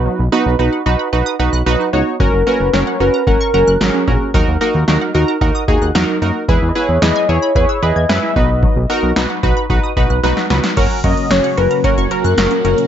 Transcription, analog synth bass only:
X:1
M:4/4
L:1/16
Q:1/4=112
K:B
V:1 name="Analog synth bass" clef=bass
z B,,, z B,,, B,,, z B,,, z B,,, z B,,, B,,, B,,, z C,, z | F,,, F,,, z F,,, F,,, z F,,, z F,,, z F,,, F,,, G,,, z A,,, z | D,, D,, z D,, D,, z D,, z D,, z D,, D,, E,, z F,, z | E,, E,, z E,, E,, z E,, z E,, z E,, E,, F,, z B,,,2- |
B,,, B,,, z B,,, B,,, z B,,, z B,,, z B,,, B,,, B,,, z C,, z | F,,, z F,, z F,,, z F,,, z2 F,,, z F,, F,,, z F,,, z |]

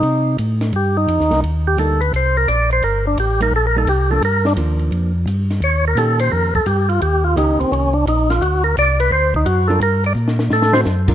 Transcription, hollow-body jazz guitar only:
X:1
M:4/4
L:1/8
Q:"Swing" 1/4=172
K:Gm
V:1 name="Hollow-body jazz guitar"
z6 z [G,B,E] | z2 [G,B,E] z4 z | z3 [G,B,E] z [G,B,E] z [F,B,D] | z2 [F,B,D]3 z3 |
z2 [E,B,_DG]3 z3 | z2 [E,B,_DG]3 z3 | z6 z [G,DFB] | z4 z [D,A,C^F] z [G,D=FB] |]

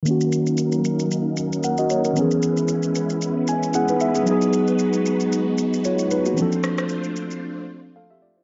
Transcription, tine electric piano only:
X:1
M:4/4
L:1/16
Q:"Swing 16ths" 1/4=114
K:Dbdor
V:1 name="Tine electric piano"
z12 [Bg] [Ge] d [DB]- | [DB] z8 z a2 [CAg] [Ec] f [CA]- | [CA] z8 z3 [=Fd]2 [Ec] [B,G]- | [B,G] z8 z3 [=A=f] [=G_f] [=F=d] [_F=c] |]
V:2 name="Tine electric piano"
[E,B,DG]16 | [E,F,CDA]16 | [G,CEA]12- [G,CEA]2 z2 | [F,=F,=C=D=A]16 |]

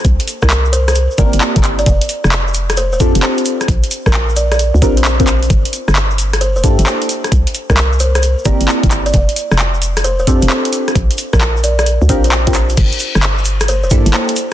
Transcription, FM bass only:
X:1
M:4/4
L:1/16
Q:"Swing 16ths" 1/4=132
K:Gdor
V:1 name="FM bass" clef=bass
C,, z2 C,,6 z G,,, G,,, z G,,,3 | F,,, z2 F,,,6 D,,, F,, F,,, z4 | B,,, z2 B,,,6 D,, B,,,6 | G,,, z2 G,,,6 E,,, G,, G,,, z4 |
C,, z2 C,,6 z G,,, G,,, z G,,,3 | F,,, z2 F,,,6 D,,, F,, F,,, z4 | B,,, z2 B,,,6 D,, B,,,6 | G,,, z2 G,,,6 E,,, G,, G,,, z4 |]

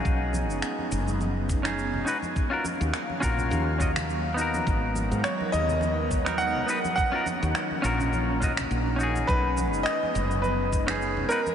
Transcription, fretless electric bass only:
X:1
M:4/4
L:1/16
Q:"Swing 16ths" 1/4=104
K:Ebm
V:1 name="Fretless electric bass" clef=bass
=B,,,3 ^F,,, z2 F,,,8 z2 | z3 E,, z2 B,,,2 E,,8 | A,,,3 A,, z2 E,,8 z2 | z3 E,, z2 B,,,6 B,,,4 |
=B,,,3 ^F,,, z2 F,,,8 z2 |]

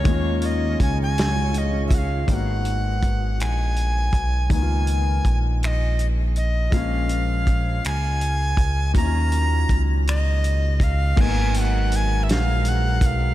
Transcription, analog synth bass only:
X:1
M:6/8
L:1/8
Q:3/8=54
K:G#dor
V:1 name="Analog synth bass" clef=bass
D,,2 C,,4 | G,,,3 A,,,2 B,,, | C,,2 A,,,4 | A,,,3 C,,2 C,, |
D,,2 C,,4 | G,,,3 A,,,2 B,,, |]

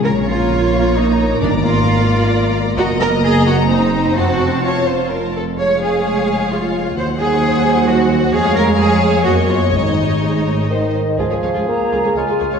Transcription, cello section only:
X:1
M:3/4
L:1/16
Q:1/4=130
K:Bbm
V:1 name="Cello section"
B2 F6 E4 | =D2 F8 z2 | G2 B2 A2 G2 E4 | G4 F6 z2 |
[K:Db] d2 A6 F4 | c2 A6 G4 | A2 B2 A4 G2 F2 | E8- E2 z2 |
D,, D,, D,, D,, z2 D,, D,, D,, D,, D,, D,, |]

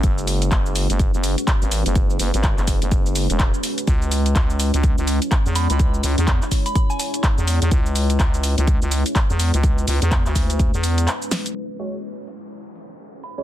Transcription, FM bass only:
X:1
M:4/4
L:1/16
Q:"Swing 16ths" 1/4=125
K:C#phr
V:1 name="FM bass" clef=bass
F,,,4 F,,,3 F,,,2 F,,,2 z2 G,,,2 F,,,- | F,,,2 F,,, G,,,2 F,,,2 F,,,4 E,,,2 z3 | C,,4 C,,3 C,,2 C,,2 z2 E,,2 C,,- | C,,2 C,, E,,2 z8 E,,2 E,, |
C,,4 C,,3 C,,2 C,,2 z2 E,,2 C,,- | C,,2 C,, E,,2 D,,4 E,,3 z4 | z16 |]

